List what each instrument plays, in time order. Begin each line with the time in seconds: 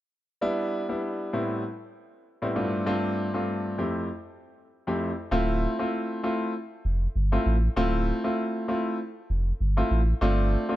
0.41 grand piano G3 B3 D4 E4
0.89 grand piano G3 B3 D4 E4
1.33 grand piano A2 G3 B3 C4 E4
2.42 grand piano A2 G3 B3 C4 E4
2.56 grand piano G2 A3 C4 D4 F4
2.86 grand piano G2 A3 C4 D4 F4
3.34 grand piano G2 A3 C4 D4 F4
3.78 grand piano F2 A3 C4 E4 G4
4.87 grand piano F2 A3 C4 E4 G4
5.31 sub bass D1, grand piano A3 C4 E4 F4
5.79 grand piano A3 C4 E4 F4
6.23 grand piano A3 C4 E4 F4
6.85 sub bass F1
7.15 sub bass G1
7.32 grand piano A3 C4 E4 F4
7.46 sub bass A1
7.76 sub bass D1, grand piano A3 C4 E4 F4
8.24 grand piano A3 C4 E4 F4
8.68 grand piano A3 C4 E4 F4
9.30 sub bass F1
9.60 sub bass G1
9.77 grand piano A3 C4 E4 F4
9.91 sub bass A1
10.21 sub bass G1, grand piano A3 C4 D4 F4
10.69 grand piano A3 C4 D4 F4